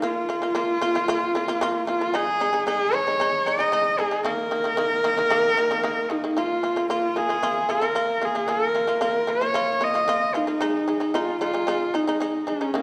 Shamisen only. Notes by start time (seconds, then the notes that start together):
0.02 A#3 F4
0.29 A#3 F4
0.42 A#3 F4
0.55 A#3 F4
0.81 A#3 F4
0.95 A#3 F4
1.08 A#3 F4
1.35 A#3 F4
1.48 A#3 F4
1.61 A#3 F4
1.87 A#3 F4
2.01 A#3 F4
2.14 G#3 D#4
2.40 G#3 D#4
2.53 G#3 D#4
2.67 G#3 D#4
2.93 G#3 D#4
3.07 G#3 D#4
3.20 G#3 D#4
3.46 G#3 D#4
3.59 G#3 D#4
3.72 G#3 D#4
3.99 G#3 D#4
4.11 G#3 D#4
4.25 D#3 A#3
4.51 D#3 A#3
4.64 D#3 A#3
4.77 D#3 A#3
5.04 D#3 A#3
5.17 D#3 A#3
5.30 D#3 A#3
5.57 D#3 A#3
5.71 D#3 A#3
5.83 D#3 A#3
6.10 D#3 A#3
6.24 D#3 A#3
6.37 A#3 F4
6.63 A#3 F4
6.76 A#3 F4
6.90 A#3 F4
7.16 A#3 F4
7.29 A#3 F4
7.43 A#3 F4
7.69 A#3 F4
7.82 A#3 F4
7.95 A#3 F4
8.21 A#3 F4
8.35 A#3 F4
8.48 A#3 F4
8.75 A#3 F4
8.87 A#3 F4
9.01 A#3 F4
9.27 A#3 F4
9.41 A#3 F4
9.54 A#3 F4
9.81 A#3 F4
9.94 A#3 F4
10.08 A#3 F4
10.34 A#3 F4
10.47 A#3 F4
10.61 G#3 D#4
10.88 G#3 D#4
11.00 G#3 D#4
11.14 G#3 D#4
11.41 G#3 D#4
11.53 G#3 D#4
11.67 G#3 D#4
11.94 G#3 D#4
12.07 G#3 D#4
12.20 G#3 D#4
12.47 G#3 D#4
12.61 G#3 D#4
12.74 D#3 A#3